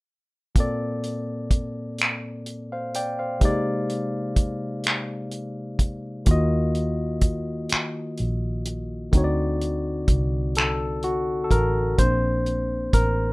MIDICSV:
0, 0, Header, 1, 5, 480
1, 0, Start_track
1, 0, Key_signature, -2, "major"
1, 0, Tempo, 952381
1, 282, Time_signature, 6, 3, 24, 8
1, 6718, End_track
2, 0, Start_track
2, 0, Title_t, "Tine electric piano"
2, 0, Program_c, 0, 4
2, 276, Note_on_c, 0, 46, 55
2, 282, Note_on_c, 0, 58, 50
2, 290, Note_on_c, 0, 60, 51
2, 297, Note_on_c, 0, 69, 49
2, 303, Note_on_c, 0, 74, 66
2, 393, Control_c, 0, 64, 127
2, 1234, Note_off_c, 0, 74, 0
2, 1372, Note_on_c, 0, 77, 53
2, 1375, Note_on_c, 0, 72, 43
2, 1481, Note_off_c, 0, 77, 0
2, 1483, Note_off_c, 0, 72, 0
2, 1489, Note_on_c, 0, 79, 59
2, 1491, Note_on_c, 0, 74, 50
2, 1600, Note_off_c, 0, 79, 0
2, 1601, Note_off_c, 0, 74, 0
2, 1608, Note_on_c, 0, 77, 48
2, 1611, Note_on_c, 0, 72, 43
2, 1699, Note_off_c, 0, 46, 0
2, 1702, Note_off_c, 0, 58, 0
2, 1706, Note_off_c, 0, 60, 0
2, 1709, Note_off_c, 0, 69, 0
2, 1711, Note_on_c, 0, 48, 54
2, 1718, Note_on_c, 0, 56, 56
2, 1724, Note_on_c, 0, 58, 49
2, 1728, Control_c, 0, 64, 0
2, 1729, Note_on_c, 0, 63, 52
2, 1734, Note_on_c, 0, 67, 55
2, 1740, Note_on_c, 0, 74, 67
2, 1804, Control_c, 0, 64, 127
2, 1833, Note_off_c, 0, 77, 0
2, 1835, Note_off_c, 0, 72, 0
2, 3136, Note_off_c, 0, 48, 0
2, 3140, Note_off_c, 0, 56, 0
2, 3143, Note_off_c, 0, 58, 0
2, 3145, Note_off_c, 0, 63, 0
2, 3148, Note_off_c, 0, 67, 0
2, 3151, Note_off_c, 0, 74, 0
2, 3152, Note_on_c, 0, 51, 60
2, 3160, Note_on_c, 0, 58, 54
2, 3166, Note_on_c, 0, 65, 55
2, 3168, Control_c, 0, 64, 0
2, 3174, Note_on_c, 0, 66, 51
2, 3181, Note_on_c, 0, 75, 65
2, 3269, Control_c, 0, 64, 127
2, 4577, Note_off_c, 0, 51, 0
2, 4581, Note_off_c, 0, 58, 0
2, 4584, Note_off_c, 0, 65, 0
2, 4588, Note_off_c, 0, 66, 0
2, 4591, Note_off_c, 0, 75, 0
2, 4595, Note_on_c, 0, 50, 57
2, 4602, Note_on_c, 0, 60, 56
2, 4609, Control_c, 0, 64, 0
2, 4609, Note_on_c, 0, 63, 54
2, 4617, Note_on_c, 0, 66, 55
2, 4625, Note_on_c, 0, 73, 52
2, 4646, Note_off_c, 0, 73, 0
2, 4658, Note_on_c, 0, 74, 65
2, 4699, Control_c, 0, 64, 127
2, 5326, Note_on_c, 0, 69, 81
2, 5558, Note_off_c, 0, 66, 0
2, 5564, Note_on_c, 0, 66, 72
2, 5571, Note_off_c, 0, 69, 0
2, 5767, Note_on_c, 0, 69, 62
2, 5774, Note_off_c, 0, 66, 0
2, 5802, Note_off_c, 0, 69, 0
2, 5803, Note_on_c, 0, 70, 82
2, 6018, Note_off_c, 0, 50, 0
2, 6022, Note_off_c, 0, 60, 0
2, 6025, Note_off_c, 0, 63, 0
2, 6043, Note_on_c, 0, 72, 85
2, 6045, Note_on_c, 0, 58, 48
2, 6047, Note_on_c, 0, 60, 44
2, 6048, Control_c, 0, 64, 0
2, 6050, Note_off_c, 0, 70, 0
2, 6050, Note_off_c, 0, 74, 0
2, 6051, Note_on_c, 0, 62, 49
2, 6147, Control_c, 0, 64, 127
2, 6521, Note_on_c, 0, 70, 79
2, 6537, Note_off_c, 0, 72, 0
2, 6718, Note_off_c, 0, 58, 0
2, 6718, Note_off_c, 0, 60, 0
2, 6718, Note_off_c, 0, 62, 0
2, 6718, Note_off_c, 0, 70, 0
2, 6718, End_track
3, 0, Start_track
3, 0, Title_t, "Fingered electric bass"
3, 0, Program_c, 1, 33
3, 3164, Note_on_c, 1, 39, 85
3, 3863, Note_off_c, 1, 39, 0
3, 4132, Note_on_c, 1, 34, 65
3, 4587, Note_off_c, 1, 34, 0
3, 4607, Note_on_c, 1, 38, 85
3, 5064, Note_off_c, 1, 38, 0
3, 5086, Note_on_c, 1, 36, 72
3, 5784, Note_off_c, 1, 36, 0
3, 5804, Note_on_c, 1, 33, 68
3, 6023, Note_off_c, 1, 33, 0
3, 6046, Note_on_c, 1, 34, 86
3, 6504, Note_off_c, 1, 34, 0
3, 6523, Note_on_c, 1, 33, 76
3, 6718, Note_off_c, 1, 33, 0
3, 6718, End_track
4, 0, Start_track
4, 0, Title_t, "Muted fingered electric bass strokes"
4, 3892, Note_on_c, 9, 29, 38
4, 3943, Note_off_c, 9, 29, 0
4, 6718, End_track
5, 0, Start_track
5, 0, Title_t, "Drums"
5, 280, Note_on_c, 9, 36, 86
5, 281, Note_on_c, 9, 42, 59
5, 331, Note_off_c, 9, 36, 0
5, 331, Note_off_c, 9, 42, 0
5, 523, Note_on_c, 9, 42, 36
5, 573, Note_off_c, 9, 42, 0
5, 759, Note_on_c, 9, 36, 75
5, 760, Note_on_c, 9, 42, 56
5, 809, Note_off_c, 9, 36, 0
5, 811, Note_off_c, 9, 42, 0
5, 1000, Note_on_c, 9, 42, 48
5, 1016, Note_on_c, 9, 26, 85
5, 1051, Note_off_c, 9, 42, 0
5, 1066, Note_off_c, 9, 26, 0
5, 1241, Note_on_c, 9, 42, 37
5, 1291, Note_off_c, 9, 42, 0
5, 1485, Note_on_c, 9, 42, 58
5, 1535, Note_off_c, 9, 42, 0
5, 1720, Note_on_c, 9, 36, 89
5, 1720, Note_on_c, 9, 42, 59
5, 1770, Note_off_c, 9, 42, 0
5, 1771, Note_off_c, 9, 36, 0
5, 1964, Note_on_c, 9, 42, 38
5, 2015, Note_off_c, 9, 42, 0
5, 2199, Note_on_c, 9, 36, 76
5, 2200, Note_on_c, 9, 42, 55
5, 2250, Note_off_c, 9, 36, 0
5, 2250, Note_off_c, 9, 42, 0
5, 2438, Note_on_c, 9, 42, 53
5, 2454, Note_on_c, 9, 26, 94
5, 2488, Note_off_c, 9, 42, 0
5, 2504, Note_off_c, 9, 26, 0
5, 2679, Note_on_c, 9, 42, 36
5, 2729, Note_off_c, 9, 42, 0
5, 2918, Note_on_c, 9, 36, 71
5, 2920, Note_on_c, 9, 42, 59
5, 2968, Note_off_c, 9, 36, 0
5, 2970, Note_off_c, 9, 42, 0
5, 3155, Note_on_c, 9, 42, 61
5, 3159, Note_on_c, 9, 36, 88
5, 3206, Note_off_c, 9, 42, 0
5, 3209, Note_off_c, 9, 36, 0
5, 3402, Note_on_c, 9, 42, 36
5, 3452, Note_off_c, 9, 42, 0
5, 3636, Note_on_c, 9, 42, 57
5, 3637, Note_on_c, 9, 36, 77
5, 3687, Note_off_c, 9, 42, 0
5, 3688, Note_off_c, 9, 36, 0
5, 3878, Note_on_c, 9, 42, 53
5, 3894, Note_on_c, 9, 26, 93
5, 3928, Note_off_c, 9, 42, 0
5, 3944, Note_off_c, 9, 26, 0
5, 4120, Note_on_c, 9, 42, 38
5, 4171, Note_off_c, 9, 42, 0
5, 4363, Note_on_c, 9, 42, 57
5, 4413, Note_off_c, 9, 42, 0
5, 4601, Note_on_c, 9, 36, 82
5, 4603, Note_on_c, 9, 42, 61
5, 4651, Note_off_c, 9, 36, 0
5, 4653, Note_off_c, 9, 42, 0
5, 4846, Note_on_c, 9, 42, 38
5, 4896, Note_off_c, 9, 42, 0
5, 5080, Note_on_c, 9, 36, 81
5, 5080, Note_on_c, 9, 42, 58
5, 5130, Note_off_c, 9, 36, 0
5, 5130, Note_off_c, 9, 42, 0
5, 5319, Note_on_c, 9, 42, 52
5, 5335, Note_on_c, 9, 26, 95
5, 5370, Note_off_c, 9, 42, 0
5, 5385, Note_off_c, 9, 26, 0
5, 5558, Note_on_c, 9, 42, 39
5, 5609, Note_off_c, 9, 42, 0
5, 5799, Note_on_c, 9, 36, 73
5, 5802, Note_on_c, 9, 42, 62
5, 5849, Note_off_c, 9, 36, 0
5, 5852, Note_off_c, 9, 42, 0
5, 6040, Note_on_c, 9, 36, 88
5, 6041, Note_on_c, 9, 42, 70
5, 6091, Note_off_c, 9, 36, 0
5, 6091, Note_off_c, 9, 42, 0
5, 6281, Note_on_c, 9, 42, 39
5, 6332, Note_off_c, 9, 42, 0
5, 6518, Note_on_c, 9, 36, 82
5, 6519, Note_on_c, 9, 42, 62
5, 6569, Note_off_c, 9, 36, 0
5, 6569, Note_off_c, 9, 42, 0
5, 6718, End_track
0, 0, End_of_file